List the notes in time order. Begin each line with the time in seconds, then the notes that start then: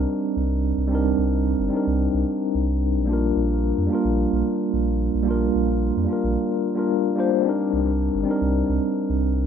Already playing: G3 C4 D4 D#4 A#4
0.36 C2
0.77 C2
0.87 G3 C4 D4
0.93 D#4 A#4
1.18 C2
1.59 G1
1.69 G3 C4 D4
1.74 D#4 A#4
1.87 C2
2.14 C2
2.55 C2
2.96 A#1
3.05 G3 A#3
3.09 D4 F4
3.13 A#4
3.36 A#1
3.78 F2
3.87 G3 A#3
3.91 D4 F4 A#4
4.05 A#1
4.33 A#1
4.73 A#1
5.14 A#1
5.23 G3 A#3
5.27 D4 F4
5.31 A#4
5.55 A#1
5.97 F2
6.05 G3 A#3 D4
6.11 F4 A#4
6.24 A#1
6.75 G3 A#3 D4 F4 A#4
7.16 G3 A#3 D4 F4
7.20 C5
7.41 G3 C4 D4
7.47 D#4 A#4
7.73 C2
8.15 G1
8.23 G3 C4 D4
8.29 D#4 A#4
8.41 C2
8.69 C2
9.09 C2